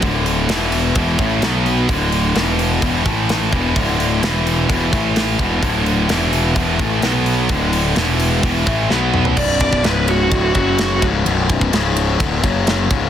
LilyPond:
<<
  \new Staff \with { instrumentName = "Lead electric guitar" } { \time 4/4 \key b \minor \tempo 4 = 128 r1 | r1 | r1 | r1 |
r1 | d''8 d''8 b'8 fis'4 fis'4 r8 | r1 | }
  \new Staff \with { instrumentName = "Distorted electric guitar" } { \clef bass \time 4/4 \key b \minor <d, a, d>4 <e, b, e>4 <e, b, e>8 <a, e a>8 <b, fis b>4 | <d, a, d>4 <e, b, e>4 <e, b, e>8 <a, e a>4 <e, b, e>8 | <d, a, d>4 <e, b, e>4 <e, b, e>8 <a, e a>4 <e, b, e>8 | <d, a, d>4 <e, b, e>4 <e, b, e>8 <a, e a>8 <b, fis b>4 |
<d, a, d>4 <e, b, e>4 <e, b, e>8 <a, e a>8 <b, fis b>4 | <b,, fis, b,>4 <cis, gis, cis>4 <d, a, d>8 <fis, cis fis>4 <cis, gis, cis>8 | <b,, fis, b,>4 <cis, gis, cis>4 <d, a, d>8 <fis, cis fis>4 <cis, gis, cis>8 | }
  \new Staff \with { instrumentName = "Distorted electric guitar" } { \clef bass \time 4/4 \key b \minor <d, a, d>4 <e, b, e>4 <e, b, e>8 <a, e a>8 <b, fis b>4 | <d, a, d>4 <e, b, e>4 <e, b, e>8 <a, e a>4 <e, b, e>8 | <d, a, d>4 <e, b, e>4 <e, b, e>8 <a, e a>4 <e, b, e>8 | <d, a, d>4 <e, b, e>4 <e, b, e>8 <a, e a>8 <b, fis b>4 |
<d, a, d>4 <e, b, e>4 <e, b, e>8 <a, e a>8 <b, fis b>4 | r1 | r1 | }
  \new Staff \with { instrumentName = "Picked electric bass" } { \clef bass \time 4/4 \key b \minor d,,4 e,,4 e,,8 a,,8 b,,4 | d,,4 e,,4 e,,8 a,,4 e,,8 | d,,4 e,,4 e,,8 a,,4 e,,8 | d,,4 e,,4 e,,8 a,,8 b,,4 |
d,,4 e,,4 e,,8 a,,8 b,,4 | b,,,4 cis,,4 d,,8 fis,,4 cis,,8 | b,,,4 cis,,4 d,,8 fis,,4 cis,,8 | }
  \new DrumStaff \with { instrumentName = "Drums" } \drummode { \time 4/4 <hho bd>8 hho8 <hho sn>8 hho8 <hho bd>8 <hho bd>8 <hho sn>8 hho8 | <hho bd>8 hho8 <hho sn>8 hho8 <hho bd>8 <hho bd>8 <hho sn>8 <hho bd>8 | <hho bd>8 hho8 <hho sn>8 hho8 <hho bd>8 <hho bd>8 <hho sn>8 <hho bd>8 | <hho bd>8 hho8 <hho sn>8 hho8 <hho bd>8 <hho bd>8 <hho sn>8 hho8 |
<hho bd>8 hho8 <hho sn>8 hho8 <hho bd>8 <hho bd>8 sn8 toml16 tomfh16 | <cymc bd>8 <bd cymr>16 bd16 <cymr sn>8 cymr8 <bd cymr>8 <bd cymr>8 <cymr sn>8 <bd cymr>8 | cymr8 <bd cymr>16 bd16 <cymr sn>8 cymr8 <bd cymr>8 <bd cymr>8 <cymr sn>8 <bd cymr>8 | }
>>